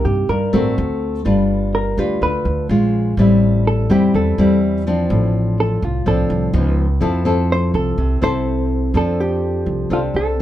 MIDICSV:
0, 0, Header, 1, 4, 480
1, 0, Start_track
1, 0, Key_signature, -1, "major"
1, 0, Tempo, 480769
1, 1247, Time_signature, 4, 2, 24, 8
1, 10402, End_track
2, 0, Start_track
2, 0, Title_t, "Hollow-body jazz guitar"
2, 0, Program_c, 0, 26
2, 49, Note_on_c, 0, 67, 65
2, 281, Note_off_c, 0, 67, 0
2, 293, Note_on_c, 0, 70, 76
2, 737, Note_off_c, 0, 70, 0
2, 1745, Note_on_c, 0, 70, 70
2, 1969, Note_off_c, 0, 70, 0
2, 1985, Note_on_c, 0, 67, 47
2, 2209, Note_off_c, 0, 67, 0
2, 2225, Note_on_c, 0, 71, 85
2, 2663, Note_off_c, 0, 71, 0
2, 3668, Note_on_c, 0, 69, 73
2, 3891, Note_off_c, 0, 69, 0
2, 3906, Note_on_c, 0, 67, 89
2, 4130, Note_off_c, 0, 67, 0
2, 4148, Note_on_c, 0, 69, 76
2, 4585, Note_off_c, 0, 69, 0
2, 5594, Note_on_c, 0, 69, 77
2, 5814, Note_off_c, 0, 69, 0
2, 5836, Note_on_c, 0, 65, 46
2, 6055, Note_off_c, 0, 65, 0
2, 6067, Note_on_c, 0, 69, 76
2, 6505, Note_off_c, 0, 69, 0
2, 7511, Note_on_c, 0, 72, 77
2, 7733, Note_off_c, 0, 72, 0
2, 7737, Note_on_c, 0, 69, 76
2, 8180, Note_off_c, 0, 69, 0
2, 8222, Note_on_c, 0, 72, 95
2, 8954, Note_off_c, 0, 72, 0
2, 8958, Note_on_c, 0, 69, 78
2, 9190, Note_off_c, 0, 69, 0
2, 9190, Note_on_c, 0, 67, 75
2, 9912, Note_off_c, 0, 67, 0
2, 9916, Note_on_c, 0, 65, 76
2, 9977, Note_off_c, 0, 65, 0
2, 10148, Note_on_c, 0, 69, 85
2, 10402, Note_off_c, 0, 69, 0
2, 10402, End_track
3, 0, Start_track
3, 0, Title_t, "Nylon-string guitar"
3, 0, Program_c, 1, 24
3, 0, Note_on_c, 1, 48, 56
3, 0, Note_on_c, 1, 58, 57
3, 0, Note_on_c, 1, 63, 61
3, 0, Note_on_c, 1, 67, 64
3, 270, Note_off_c, 1, 48, 0
3, 297, Note_on_c, 1, 43, 50
3, 497, Note_off_c, 1, 58, 0
3, 498, Note_off_c, 1, 63, 0
3, 498, Note_off_c, 1, 67, 0
3, 528, Note_on_c, 1, 57, 69
3, 532, Note_on_c, 1, 60, 68
3, 536, Note_on_c, 1, 66, 68
3, 748, Note_off_c, 1, 43, 0
3, 1209, Note_off_c, 1, 57, 0
3, 1211, Note_off_c, 1, 60, 0
3, 1213, Note_off_c, 1, 66, 0
3, 1245, Note_on_c, 1, 55, 54
3, 1249, Note_on_c, 1, 62, 54
3, 1253, Note_on_c, 1, 65, 54
3, 1257, Note_on_c, 1, 71, 54
3, 1930, Note_off_c, 1, 62, 0
3, 1931, Note_off_c, 1, 65, 0
3, 1934, Note_off_c, 1, 71, 0
3, 1974, Note_on_c, 1, 62, 59
3, 1980, Note_on_c, 1, 65, 64
3, 1985, Note_on_c, 1, 71, 68
3, 2182, Note_off_c, 1, 55, 0
3, 2213, Note_on_c, 1, 50, 49
3, 2652, Note_off_c, 1, 62, 0
3, 2655, Note_off_c, 1, 65, 0
3, 2658, Note_off_c, 1, 71, 0
3, 2666, Note_off_c, 1, 50, 0
3, 2697, Note_on_c, 1, 61, 50
3, 2698, Note_on_c, 1, 56, 49
3, 2702, Note_on_c, 1, 65, 64
3, 3133, Note_off_c, 1, 61, 0
3, 3135, Note_off_c, 1, 56, 0
3, 3136, Note_off_c, 1, 65, 0
3, 3178, Note_on_c, 1, 45, 54
3, 3181, Note_on_c, 1, 60, 52
3, 3182, Note_on_c, 1, 55, 55
3, 3188, Note_on_c, 1, 64, 65
3, 3854, Note_off_c, 1, 55, 0
3, 3857, Note_off_c, 1, 60, 0
3, 3858, Note_off_c, 1, 64, 0
3, 3889, Note_on_c, 1, 55, 63
3, 3896, Note_on_c, 1, 60, 61
3, 3901, Note_on_c, 1, 64, 69
3, 4110, Note_off_c, 1, 45, 0
3, 4139, Note_on_c, 1, 52, 52
3, 4330, Note_off_c, 1, 55, 0
3, 4333, Note_off_c, 1, 60, 0
3, 4336, Note_off_c, 1, 64, 0
3, 4375, Note_on_c, 1, 55, 63
3, 4378, Note_on_c, 1, 60, 70
3, 4387, Note_on_c, 1, 64, 72
3, 4813, Note_off_c, 1, 55, 0
3, 4814, Note_off_c, 1, 60, 0
3, 4819, Note_off_c, 1, 64, 0
3, 4859, Note_on_c, 1, 53, 58
3, 4864, Note_on_c, 1, 60, 58
3, 4867, Note_on_c, 1, 62, 62
3, 5069, Note_off_c, 1, 52, 0
3, 5092, Note_on_c, 1, 45, 57
3, 5775, Note_off_c, 1, 53, 0
3, 5776, Note_off_c, 1, 60, 0
3, 5779, Note_off_c, 1, 62, 0
3, 6026, Note_off_c, 1, 45, 0
3, 6049, Note_on_c, 1, 53, 53
3, 6050, Note_on_c, 1, 45, 53
3, 6053, Note_on_c, 1, 60, 56
3, 6062, Note_on_c, 1, 62, 58
3, 6489, Note_off_c, 1, 53, 0
3, 6492, Note_off_c, 1, 60, 0
3, 6496, Note_off_c, 1, 62, 0
3, 6505, Note_off_c, 1, 45, 0
3, 6523, Note_on_c, 1, 53, 57
3, 6527, Note_on_c, 1, 59, 52
3, 6535, Note_on_c, 1, 63, 62
3, 6848, Note_off_c, 1, 53, 0
3, 6850, Note_off_c, 1, 59, 0
3, 6854, Note_off_c, 1, 63, 0
3, 6993, Note_on_c, 1, 53, 57
3, 6996, Note_on_c, 1, 60, 55
3, 7001, Note_on_c, 1, 64, 61
3, 7004, Note_on_c, 1, 69, 62
3, 7204, Note_off_c, 1, 60, 0
3, 7205, Note_off_c, 1, 64, 0
3, 7207, Note_off_c, 1, 69, 0
3, 7239, Note_on_c, 1, 60, 68
3, 7247, Note_on_c, 1, 69, 66
3, 7248, Note_on_c, 1, 64, 63
3, 7937, Note_off_c, 1, 53, 0
3, 7968, Note_on_c, 1, 48, 55
3, 8166, Note_off_c, 1, 60, 0
3, 8168, Note_off_c, 1, 64, 0
3, 8170, Note_off_c, 1, 69, 0
3, 8202, Note_on_c, 1, 60, 63
3, 8206, Note_on_c, 1, 64, 68
3, 8213, Note_on_c, 1, 69, 76
3, 8887, Note_off_c, 1, 60, 0
3, 8889, Note_off_c, 1, 64, 0
3, 8891, Note_off_c, 1, 69, 0
3, 8905, Note_off_c, 1, 48, 0
3, 8927, Note_on_c, 1, 53, 52
3, 8934, Note_on_c, 1, 60, 48
3, 8935, Note_on_c, 1, 69, 60
3, 8937, Note_on_c, 1, 62, 49
3, 9853, Note_off_c, 1, 60, 0
3, 9853, Note_off_c, 1, 62, 0
3, 9855, Note_off_c, 1, 69, 0
3, 9866, Note_off_c, 1, 53, 0
3, 9887, Note_on_c, 1, 60, 49
3, 9889, Note_on_c, 1, 48, 51
3, 9892, Note_on_c, 1, 62, 49
3, 9896, Note_on_c, 1, 69, 55
3, 10330, Note_off_c, 1, 60, 0
3, 10333, Note_off_c, 1, 62, 0
3, 10335, Note_off_c, 1, 69, 0
3, 10402, Note_off_c, 1, 48, 0
3, 10402, End_track
4, 0, Start_track
4, 0, Title_t, "Upright bass"
4, 0, Program_c, 2, 32
4, 49, Note_on_c, 2, 43, 83
4, 271, Note_off_c, 2, 43, 0
4, 288, Note_on_c, 2, 43, 86
4, 511, Note_off_c, 2, 43, 0
4, 531, Note_on_c, 2, 33, 79
4, 752, Note_off_c, 2, 33, 0
4, 778, Note_on_c, 2, 38, 95
4, 1219, Note_off_c, 2, 38, 0
4, 1254, Note_on_c, 2, 31, 93
4, 1931, Note_off_c, 2, 31, 0
4, 1971, Note_on_c, 2, 38, 83
4, 2192, Note_off_c, 2, 38, 0
4, 2212, Note_on_c, 2, 38, 85
4, 2433, Note_off_c, 2, 38, 0
4, 2447, Note_on_c, 2, 38, 81
4, 2670, Note_off_c, 2, 38, 0
4, 2689, Note_on_c, 2, 34, 96
4, 3135, Note_off_c, 2, 34, 0
4, 3167, Note_on_c, 2, 33, 93
4, 3847, Note_off_c, 2, 33, 0
4, 3890, Note_on_c, 2, 40, 85
4, 4112, Note_off_c, 2, 40, 0
4, 4135, Note_on_c, 2, 40, 88
4, 4355, Note_off_c, 2, 40, 0
4, 4373, Note_on_c, 2, 40, 79
4, 5051, Note_off_c, 2, 40, 0
4, 5093, Note_on_c, 2, 33, 97
4, 5770, Note_off_c, 2, 33, 0
4, 5814, Note_on_c, 2, 36, 89
4, 6034, Note_off_c, 2, 36, 0
4, 6051, Note_on_c, 2, 36, 84
4, 6273, Note_off_c, 2, 36, 0
4, 6288, Note_on_c, 2, 36, 88
4, 6511, Note_off_c, 2, 36, 0
4, 6525, Note_on_c, 2, 37, 100
4, 6973, Note_off_c, 2, 37, 0
4, 7008, Note_on_c, 2, 41, 95
4, 7688, Note_off_c, 2, 41, 0
4, 7727, Note_on_c, 2, 36, 91
4, 7951, Note_off_c, 2, 36, 0
4, 7964, Note_on_c, 2, 36, 89
4, 8189, Note_off_c, 2, 36, 0
4, 8206, Note_on_c, 2, 36, 83
4, 8887, Note_off_c, 2, 36, 0
4, 8925, Note_on_c, 2, 41, 88
4, 9607, Note_off_c, 2, 41, 0
4, 9647, Note_on_c, 2, 36, 80
4, 9872, Note_off_c, 2, 36, 0
4, 9885, Note_on_c, 2, 36, 78
4, 10111, Note_off_c, 2, 36, 0
4, 10127, Note_on_c, 2, 36, 74
4, 10402, Note_off_c, 2, 36, 0
4, 10402, End_track
0, 0, End_of_file